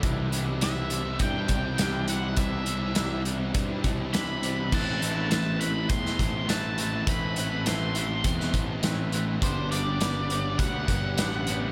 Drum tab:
CC |----------------|----------------|x---------------|----------------|
HH |x-x-x-x-x-x-x-x-|x-x-x-x-x-x-x-x-|--x-x-x-x-x-x-x-|x-x-x-x-x-x-x-x-|
SD |----o-------o---|----o-------o---|----o----o--o---|----o----o--o---|
BD |o-------o-o-----|o-------o-o-----|o-------o-o-----|o-------o-o-----|

CC |----------------|
HH |x-x-x-x-x-x-x-x-|
SD |----o-------o---|
BD |o-------o-o-----|